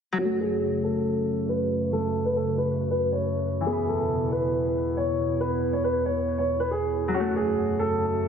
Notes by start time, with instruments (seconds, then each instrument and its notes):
0.12 harp F#3
0.18 ambient pad F#2 C#3 A3 F#4, harp C#4, grand piano F#4
0.24 harp A3
0.40 grand piano G#4
0.84 grand piano A4
1.49 grand piano B4
1.93 grand piano A4
2.25 grand piano B4
2.36 grand piano A4
2.58 grand piano B4
2.91 grand piano B4
3.12 grand piano C#5
3.61 harp E3
3.67 ambient pad E2 B2 B3 E4, harp B3, grand piano G#4
3.72 harp B4
3.88 grand piano A4
4.32 grand piano B4
4.97 grand piano C#5
5.41 grand piano B4
5.73 grand piano C#5
5.84 grand piano B4
6.06 grand piano C#5
6.38 grand piano C#5
6.60 grand piano B4
6.71 grand piano G#4
7.08 harp F#3
7.14 ambient pad F#2 C#3 A3 F#4, harp C#4, grand piano F#4
7.20 harp A3
7.36 grand piano G#4
7.79 grand piano A4